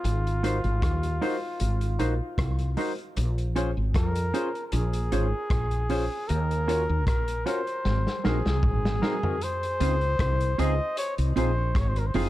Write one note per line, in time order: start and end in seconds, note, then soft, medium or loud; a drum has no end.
0.00 2.77 F4 medium
0.04 0.60 G#1 loud
0.04 closed hi-hat medium
0.27 closed hi-hat soft
0.43 0.56 G#3 medium
0.43 0.57 D#4 medium
0.43 0.56 D#4 medium
0.43 0.57 F#4 medium
0.43 0.57 A#4 medium
0.43 0.58 C5 medium
0.43 0.57 C5 medium
0.43 closed hi-hat medium
0.64 0.81 G#1 medium
0.64 closed hi-hat soft
0.82 1.19 D#2 medium
0.82 kick loud
0.82 cross-stick loud
0.82 closed hi-hat medium
1.03 closed hi-hat medium
1.21 1.34 G#3 medium
1.21 1.35 D#4 medium
1.21 1.36 F#4 medium
1.21 1.35 F#4 medium
1.21 1.35 A#4 medium
1.21 1.36 C5 loud
1.21 1.35 C5 medium
1.21 open hi-hat medium
1.60 1.97 G#1 loud
1.60 closed hi-hat medium
1.81 closed hi-hat medium
1.99 2.19 A#1 medium
1.99 2.13 G#3 medium
1.99 2.13 D#4 medium
1.99 2.13 F#4 medium
1.99 2.13 A#4 medium
1.99 2.14 C5 medium
1.99 2.13 C5 medium
1.99 closed hi-hat medium
2.38 2.74 C2 medium
2.38 kick loud
2.38 cross-stick loud
2.38 closed hi-hat medium
2.59 closed hi-hat soft
2.77 2.90 G#3 medium
2.77 2.91 D#4 loud
2.77 2.91 D#4 medium
2.77 2.92 F#4 medium
2.77 2.91 F#4 medium
2.77 2.92 A#4 medium
2.77 2.91 C5 medium
2.77 2.92 C5 loud
2.77 open hi-hat medium
2.98 closed hi-hat soft
3.17 3.73 A#1 loud
3.17 closed hi-hat medium
3.38 closed hi-hat soft
3.56 3.69 C#4 medium
3.56 3.70 C#4 medium
3.56 3.70 F4 medium
3.56 3.69 F4 medium
3.56 3.70 G#4 medium
3.56 3.69 G#4 loud
3.56 3.70 C5 loud
3.56 3.69 C#5 loud
3.56 closed hi-hat medium
3.77 3.94 G#1 medium
3.94 4.31 F2 medium
3.94 4.67 A#4 medium
3.94 kick medium
3.94 cross-stick medium
3.94 closed hi-hat medium
4.15 closed hi-hat medium
4.34 4.47 C#4 medium
4.34 4.48 C#4 medium
4.34 4.48 F4 medium
4.34 4.47 F4 medium
4.34 4.48 G#4 medium
4.34 4.47 G#4 medium
4.34 4.48 C5 loud
4.34 4.47 C#5 medium
4.34 closed hi-hat medium
4.55 closed hi-hat soft
4.67 4.74 A#4 medium
4.72 5.09 A#1 loud
4.72 6.30 G#4 medium
4.72 closed hi-hat loud
4.93 closed hi-hat medium
5.12 5.32 G#1 medium
5.12 5.26 C#4 medium
5.12 5.25 C#4 medium
5.12 5.26 F4 medium
5.12 5.25 F4 medium
5.12 5.26 G#4 medium
5.12 5.27 C5 medium
5.12 5.26 C#5 medium
5.12 closed hi-hat medium
5.50 6.07 A#1 medium
5.50 kick loud
5.50 cross-stick loud
5.50 closed hi-hat medium
5.71 closed hi-hat soft
5.90 6.03 C#4 medium
5.90 6.04 C#4 medium
5.90 6.04 F4 medium
5.90 6.03 F4 medium
5.90 6.03 G#4 medium
5.90 6.04 G#4 medium
5.90 6.04 C5 loud
5.90 6.03 C#5 loud
5.90 open hi-hat medium
6.28 6.86 D#2 loud
6.28 7.07 A#4 loud
6.28 closed hi-hat medium
6.51 closed hi-hat soft
6.68 6.82 C#4 medium
6.68 6.81 C#4 medium
6.68 6.82 F4 medium
6.68 6.82 F#4 medium
6.68 6.81 F#4 medium
6.68 6.82 A#4 medium
6.68 6.82 A#4 loud
6.68 6.81 C#5 medium
6.68 closed hi-hat medium
6.89 7.07 D#2 medium
7.07 7.44 A#1 medium
7.07 7.47 A#4 medium
7.07 kick loud
7.07 cross-stick loud
7.07 closed hi-hat medium
7.28 closed hi-hat medium
7.46 7.59 C#4 medium
7.46 7.60 C#4 medium
7.46 7.60 F4 medium
7.46 7.60 F#4 medium
7.46 7.60 A#4 medium
7.46 7.61 A#4 medium
7.46 8.24 C5 medium
7.46 7.60 C#5 medium
7.46 closed hi-hat medium
7.67 closed hi-hat soft
7.85 8.05 G#1 loud
7.85 snare soft
8.07 snare soft
8.24 8.44 A#1 medium
8.24 8.38 G#3 medium
8.24 8.38 C4 medium
8.24 8.38 D#4 medium
8.24 8.38 F#4 medium
8.24 9.45 G#4 medium
8.24 8.39 A#4 medium
8.24 8.38 C5 medium
8.24 snare medium
8.45 8.62 C2 medium
8.45 snare medium
8.63 9.00 G#1 medium
8.63 kick loud
8.63 mid tom medium
8.85 snare medium
9.02 9.16 G#3 medium
9.02 9.16 C4 medium
9.02 9.16 D#4 medium
9.02 9.16 F#4 medium
9.02 9.16 A#4 loud
9.02 9.16 C5 medium
9.02 snare medium
9.23 9.36 C4 medium
9.23 9.36 D#4 medium
9.23 9.36 F#4 medium
9.23 9.36 A#4 medium
9.23 floor tom medium
9.41 10.61 C5 loud
9.41 closed hi-hat medium
9.63 closed hi-hat soft
9.80 10.17 C#2 loud
9.80 9.94 C4 medium
9.80 9.95 D#4 medium
9.80 9.94 F4 medium
9.80 9.95 G#4 medium
9.80 9.94 G#4 medium
9.80 9.94 C5 medium
9.80 closed hi-hat medium
10.01 closed hi-hat soft
10.19 10.56 C2 medium
10.19 kick loud
10.19 cross-stick loud
10.19 closed hi-hat medium
10.40 closed hi-hat medium
10.58 10.78 C#2 medium
10.58 10.72 C4 medium
10.58 10.73 C4 loud
10.58 10.73 D#4 medium
10.58 10.72 F4 medium
10.58 10.73 F4 medium
10.58 10.72 G#4 medium
10.58 10.73 G#4 loud
10.58 10.72 C5 medium
10.58 10.98 D#5 loud
10.58 closed hi-hat medium
10.97 11.14 C#5 loud
10.97 closed hi-hat loud
11.18 11.35 C2 medium
11.18 closed hi-hat medium
11.36 11.73 A#1 medium
11.36 11.49 C4 medium
11.36 11.51 C4 medium
11.36 11.51 D#4 medium
11.36 11.50 F4 medium
11.36 11.51 F4 medium
11.36 11.50 G#4 loud
11.36 11.51 G#4 medium
11.36 11.50 C5 loud
11.36 11.80 C5 loud
11.36 closed hi-hat medium
11.75 12.12 G#1 loud
11.75 11.90 C#5 medium
11.75 kick loud
11.75 cross-stick loud
11.75 closed hi-hat medium
11.88 12.00 C5 medium
11.96 12.09 A#4 medium
11.96 muted clean electric guitar stroke soft
11.96 closed hi-hat medium
12.07 12.15 C5 medium
12.14 12.29 F#1 medium
12.14 12.28 C4 loud
12.14 12.29 C4 medium
12.14 12.29 D#4 medium
12.14 12.29 F4 medium
12.14 12.28 F4 loud
12.14 12.29 G#4 loud
12.14 12.28 G#4 medium
12.14 12.28 C5 loud
12.14 open hi-hat medium